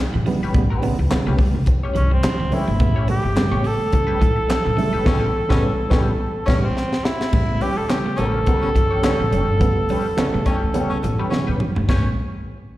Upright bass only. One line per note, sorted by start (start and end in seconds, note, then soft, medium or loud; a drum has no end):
0.15 0.25 A2 medium
0.43 0.53 G1 medium
0.55 0.91 A1 loud
0.99 1.09 C#2 loud
1.11 muted upright bass stroke soft
1.27 1.51 C2 medium
1.96 2.19 C2 medium
2.25 muted upright bass stroke medium
2.41 2.51 C#2 medium
2.68 2.78 G1 medium
2.80 3.17 A1 loud
3.24 3.35 G1 medium
3.37 muted upright bass stroke medium
3.52 3.76 A1 medium
3.93 4.06 C#2 loud
4.22 4.35 A2 loud
4.66 4.76 A2 loud
4.94 5.04 G1 medium
5.06 5.26 A1 loud
5.51 5.69 A1 medium
5.91 6.11 A1 loud
6.48 6.68 A1 loud
7.33 7.56 A1 loud
7.78 muted upright bass stroke soft
8.19 8.42 A1 loud
8.63 muted upright bass stroke medium
8.76 8.89 G1 medium
9.19 9.30 A1 medium
9.32 9.45 F#1 medium
9.48 9.59 G1 medium
9.61 9.74 A1 loud
9.90 10.03 E2 medium
10.18 muted upright bass stroke soft
10.34 10.44 A2 loud
10.63 10.73 E2 medium
10.91 muted upright bass stroke soft
11.04 11.17 A1 loud
11.49 11.59 A2 medium
11.77 11.87 G1 medium
11.89 12.15 A1 medium